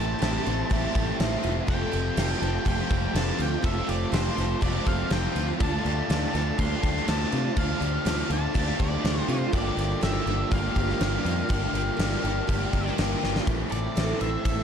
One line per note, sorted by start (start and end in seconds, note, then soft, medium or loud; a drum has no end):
0.00 0.13 A1 medium
0.00 0.45 A2 loud
0.00 0.45 E3 loud
0.00 0.20 A3 medium
0.00 0.21 C4 loud
0.00 0.21 E4 loud
0.00 0.19 G4 medium
0.00 5.56 G4 medium
0.00 0.23 A4 loud
0.00 1.64 E5 medium
0.00 0.21 A5 loud
0.00 7.53 A5 medium
0.00 1.65 C6 medium
0.19 0.38 A1 medium
0.19 0.69 E3 medium
0.19 0.48 A3 medium
0.19 0.47 C4 medium
0.19 0.45 E4 medium
0.19 0.44 G4 medium
0.19 1.15 A5 medium
0.19 snare loud
0.19 crash medium
0.23 0.44 A4 medium
0.44 0.62 A1 loud
0.44 0.96 A3 medium
0.44 0.95 C4 medium
0.44 0.93 E4 medium
0.44 0.69 A4 medium
0.44 0.92 A4 medium
0.44 crash medium
0.69 0.86 A1 loud
0.69 1.43 A2 medium
0.69 1.17 E3 loud
0.69 1.19 A3 loud
0.69 1.20 C4 medium
0.69 1.20 E4 medium
0.69 0.93 G4 medium
0.69 kick medium
0.69 crash medium
0.93 1.10 A1 medium
0.93 1.17 A3 medium
0.93 1.19 C4 medium
0.93 1.19 E4 medium
0.93 1.42 G4 medium
0.93 1.21 A4 medium
0.93 kick medium
0.93 crash medium
1.18 1.35 A1 medium
1.18 1.66 E3 medium
1.18 1.67 A3 medium
1.18 1.68 C4 medium
1.18 1.67 E4 medium
1.18 1.70 A4 medium
1.18 snare loud
1.18 crash medium
1.43 1.60 E1 medium
1.43 1.67 F4 medium
1.43 crash medium
1.67 1.84 F1 medium
1.67 3.61 F3 loud
1.67 2.15 A3 medium
1.67 2.16 C4 medium
1.67 2.17 F4 loud
1.67 1.95 A4 medium
1.67 2.18 A4 loud
1.67 5.56 F5 medium
1.67 2.42 G5 medium
1.67 13.43 D6 loud
1.67 kick loud
1.67 crash medium
1.92 2.09 F1 medium
1.92 2.16 G4 medium
1.92 crash medium
2.16 2.33 F1 medium
2.16 2.65 F3 medium
2.16 3.12 A3 medium
2.16 2.43 C4 medium
2.16 2.42 F4 medium
2.16 2.40 G4 medium
2.16 2.40 A4 medium
2.16 snare loud
2.16 crash medium
2.40 2.57 F1 loud
2.40 2.66 A3 medium
2.40 2.92 C4 medium
2.40 2.90 F4 medium
2.40 2.88 A4 medium
2.40 2.65 A4 medium
2.40 2.67 G5 loud
2.40 crash medium
2.65 2.82 F1 loud
2.65 3.14 F3 loud
2.65 3.15 A3 loud
2.65 3.16 C4 loud
2.65 3.16 F4 loud
2.65 2.88 G4 loud
2.65 3.17 G5 loud
2.65 kick medium
2.65 crash medium
2.89 3.06 F1 medium
2.89 3.13 C4 medium
2.89 3.14 F4 medium
2.89 3.39 G4 medium
2.89 3.15 A4 medium
2.89 kick medium
2.89 crash medium
3.13 3.30 F1 medium
3.13 3.64 F3 medium
3.13 3.62 A3 medium
3.13 3.63 C4 medium
3.13 3.64 F4 medium
3.13 3.65 A4 medium
3.13 snare loud
3.13 crash medium
3.17 3.41 A5 medium
3.38 3.55 D2 medium
3.38 3.90 F4 medium
3.38 3.65 G5 medium
3.38 crash medium
3.62 3.80 F1 medium
3.62 5.58 F3 medium
3.62 4.10 A3 loud
3.62 4.11 C4 loud
3.62 4.13 F4 loud
3.62 3.86 A4 medium
3.62 4.13 A4 loud
3.62 3.90 E5 medium
3.62 kick loud
3.62 crash medium
3.87 4.04 F1 medium
3.87 4.11 G4 medium
3.87 4.13 D5 medium
3.87 crash medium
4.11 4.28 F1 loud
4.11 4.61 F3 medium
4.11 5.09 A3 medium
4.11 4.38 C4 medium
4.11 4.36 F4 medium
4.11 4.37 G4 loud
4.11 4.35 A4 medium
4.11 4.62 C5 medium
4.11 snare loud
4.11 crash medium
4.35 4.54 F1 medium
4.35 4.87 C4 medium
4.35 4.86 F4 medium
4.35 4.84 A4 medium
4.35 4.61 A4 medium
4.35 snare soft
4.35 crash medium
4.39 4.62 A3 medium
4.61 4.78 F1 loud
4.61 5.10 F3 medium
4.61 5.11 A3 medium
4.61 5.11 C4 loud
4.61 5.12 F4 loud
4.61 4.84 G4 medium
4.61 4.87 D5 loud
4.61 kick medium
4.61 crash medium
4.85 5.03 F1 medium
4.85 5.11 C4 medium
4.85 5.12 F4 medium
4.85 5.35 G4 medium
4.85 5.13 A4 medium
4.85 5.12 F5 loud
4.85 kick medium
4.85 crash soft
5.10 5.27 F1 medium
5.10 5.60 F3 medium
5.10 5.59 A3 medium
5.10 5.60 C4 medium
5.10 5.61 F4 medium
5.10 5.61 A4 medium
5.10 5.46 G5 loud
5.10 snare loud
5.10 crash medium
5.35 5.51 D2 medium
5.35 5.88 F4 medium
5.35 crash medium
5.58 5.76 D2 medium
5.58 7.54 D3 medium
5.58 6.07 A3 medium
5.58 6.09 D4 loud
5.58 13.42 F4 medium
5.58 6.10 F4 medium
5.58 5.84 A4 medium
5.58 6.11 A4 medium
5.58 9.49 C5 medium
5.58 6.59 A5 medium
5.58 kick loud
5.58 crash medium
5.85 6.01 D2 medium
5.85 6.08 G4 medium
5.85 crash medium
6.08 6.25 D2 medium
6.08 6.58 D3 medium
6.08 7.05 A3 medium
6.08 6.35 D4 medium
6.08 6.34 F4 medium
6.08 6.33 G4 medium
6.08 6.32 A4 medium
6.08 snare loud
6.08 crash medium
6.32 6.50 D2 medium
6.32 6.58 A3 medium
6.32 6.85 D4 medium
6.32 6.83 F4 medium
6.32 6.81 A4 medium
6.32 6.58 A4 medium
6.32 snare soft
6.32 crash medium
6.58 6.74 D2 loud
6.58 7.06 D3 medium
6.58 7.06 A3 medium
6.58 7.08 D4 medium
6.58 7.09 F4 loud
6.58 6.82 G4 medium
6.58 7.09 C6 loud
6.58 kick medium
6.58 crash medium
6.82 6.99 D2 medium
6.82 7.07 D4 medium
6.82 7.07 F4 medium
6.82 7.32 G4 medium
6.82 7.08 A4 medium
6.82 kick medium
6.82 crash medium
6.97 snare soft
7.06 7.24 D2 medium
7.06 7.55 D3 medium
7.06 7.55 A3 medium
7.06 7.56 D4 medium
7.06 7.57 F4 medium
7.06 7.56 A4 medium
7.06 7.59 A5 loud
7.06 snare loud
7.06 crash medium
7.32 7.48 C3 medium
7.32 7.83 F4 medium
7.32 crash medium
7.55 7.73 D2 medium
7.55 8.29 D3 medium
7.55 8.03 A3 loud
7.55 8.05 D4 loud
7.55 8.06 F4 loud
7.55 7.80 A4 medium
7.55 8.06 A4 loud
7.55 8.32 F5 medium
7.55 13.42 G5 medium
7.55 kick medium
7.55 crash medium
7.80 7.97 D2 medium
7.80 8.04 G4 medium
7.80 crash medium
8.04 8.21 D2 medium
8.04 8.52 D3 medium
8.04 8.54 A3 medium
8.04 8.31 D4 medium
8.04 8.30 F4 medium
8.04 8.30 G4 medium
8.04 8.27 A4 medium
8.04 snare loud
8.04 crash medium
8.29 8.46 D2 loud
8.29 8.53 A3 medium
8.29 8.81 D4 medium
8.29 8.80 F4 medium
8.29 8.77 A4 medium
8.29 8.54 A4 medium
8.29 8.82 A5 loud
8.29 crash medium
8.54 8.71 D2 loud
8.54 9.02 D3 medium
8.54 9.03 A3 loud
8.54 9.05 D4 loud
8.54 9.05 F4 medium
8.54 8.78 G4 medium
8.54 kick medium
8.54 crash medium
8.79 8.96 D2 medium
8.79 9.03 D4 medium
8.79 9.04 F4 medium
8.79 9.28 G4 medium
8.79 9.04 A4 medium
8.79 9.30 D5 loud
8.79 kick medium
8.79 crash medium
9.02 9.20 D2 medium
9.02 9.51 D3 medium
9.02 9.51 A3 medium
9.02 9.53 D4 medium
9.02 9.54 F4 medium
9.02 9.52 A4 medium
9.02 snare loud
9.02 crash medium
9.28 9.44 C3 medium
9.28 9.80 F4 medium
9.28 9.54 C5 medium
9.28 crash medium
9.51 9.69 G1 loud
9.51 11.48 G2 medium
9.51 10.26 D3 medium
9.51 10.00 G3 loud
9.51 10.01 A#3 loud
9.51 10.02 D4 loud
9.51 10.03 G4 loud
9.51 9.76 A4 medium
9.51 13.42 A#4 medium
9.51 10.03 D5 medium
9.51 kick medium
9.51 crash medium
9.77 9.93 G1 medium
9.77 10.01 G4 medium
9.77 crash medium
10.00 10.18 G1 medium
10.00 10.50 D3 medium
10.00 10.28 G3 medium
10.00 10.28 A#3 medium
10.00 10.27 D4 medium
10.00 10.30 G4 loud
10.00 10.25 G4 medium
10.00 10.52 E5 medium
10.00 snare loud
10.00 crash medium
10.26 10.42 G1 medium
10.26 10.78 G3 medium
10.26 10.76 A#3 medium
10.26 10.75 D4 medium
10.26 10.74 G4 medium
10.26 10.51 A4 medium
10.26 crash medium
10.51 10.67 G1 loud
10.51 11.25 G2 medium
10.51 10.98 D3 medium
10.51 11.00 G3 loud
10.51 11.00 A#3 loud
10.51 11.00 D4 loud
10.51 10.76 G4 medium
10.51 12.94 F5 loud
10.51 kick medium
10.51 crash medium
10.75 10.92 G1 medium
10.75 10.99 G3 medium
10.75 10.99 A#3 medium
10.75 11.00 D4 medium
10.75 11.02 G4 medium
10.75 11.27 G4 medium
10.75 kick medium
10.75 crash medium
10.89 snare soft
10.99 11.17 G1 medium
10.99 11.49 D3 medium
10.99 11.48 G3 medium
10.99 11.49 A#3 medium
10.99 11.50 D4 medium
10.99 11.50 G4 medium
10.99 snare loud
10.99 crash medium
11.24 11.41 F2 medium
11.24 11.49 F4 medium
11.24 crash medium
11.48 11.66 G1 medium
11.48 12.23 G2 loud
11.48 12.23 D3 medium
11.48 11.96 G3 loud
11.48 11.98 A#3 medium
11.48 11.98 D4 medium
11.48 11.99 G4 loud
11.48 11.73 A4 medium
11.48 kick medium
11.48 crash medium
11.73 11.89 G1 medium
11.73 11.95 G4 medium
11.73 crash medium
11.97 12.15 G1 medium
11.97 12.46 D3 medium
11.97 12.25 G3 medium
11.97 12.24 A#3 medium
11.97 12.23 D4 medium
11.97 12.21 G4 medium
11.97 snare loud
11.97 crash medium
12.22 12.40 G1 medium
12.22 12.73 A#3 medium
12.22 12.72 D4 medium
12.22 12.70 G4 medium
12.22 12.47 A4 medium
12.22 crash medium
12.26 12.74 G3 medium
12.47 12.64 G1 loud
12.47 13.21 G2 medium
12.47 12.96 D3 medium
12.47 12.97 G3 medium
12.47 12.97 A#3 medium
12.47 12.98 D4 loud
12.47 12.72 G4 medium
12.47 kick medium
12.47 crash medium
12.71 12.89 G1 medium
12.71 12.95 G3 medium
12.71 12.96 A#3 medium
12.71 12.97 D4 medium
12.71 12.98 G4 medium
12.71 13.22 G4 medium
12.71 kick medium
12.71 crash medium
12.87 snare soft
12.97 13.14 G1 medium
12.97 13.45 D3 medium
12.97 13.45 G3 medium
12.97 13.45 A#3 medium
12.97 13.46 D4 medium
12.97 13.46 G4 medium
12.97 snare loud
12.97 crash medium
13.21 13.39 G1 medium
13.21 13.46 F4 medium
13.21 snare medium
13.36 snare medium
13.46 13.62 A1 medium
13.46 14.44 A2 medium
13.46 13.95 E3 medium
13.46 13.73 A3 medium
13.46 13.72 C4 medium
13.46 13.70 E4 loud
13.46 13.69 G4 medium
13.46 14.63 G4 medium
13.46 14.63 C5 medium
13.46 14.63 A5 medium
13.46 14.63 E6 loud
13.46 kick loud
13.46 ride medium
13.70 13.87 A1 medium
13.70 13.97 C4 medium
13.70 13.98 E4 medium
13.70 13.96 A4 medium
13.70 14.20 D5 medium
13.70 ride medium
13.74 13.96 A3 medium
13.95 14.12 A1 medium
13.95 14.46 E3 medium
13.95 14.23 A3 medium
13.95 14.21 C4 medium
13.95 14.20 E4 medium
13.95 14.45 A4 medium
13.95 snare loud
13.95 ride medium
14.20 14.36 A1 medium
14.20 14.46 A3 medium
14.20 14.47 C4 medium
14.20 14.47 E4 medium
14.20 14.63 C5 medium
14.20 14.44 E5 medium
14.20 ride medium
14.45 14.60 A1 loud
14.45 14.63 A2 medium
14.45 14.63 E3 medium
14.45 14.63 A3 loud
14.45 14.63 C4 loud
14.45 14.63 E4 medium
14.45 14.63 A4 medium
14.45 14.63 E5 loud
14.45 kick medium
14.45 ride medium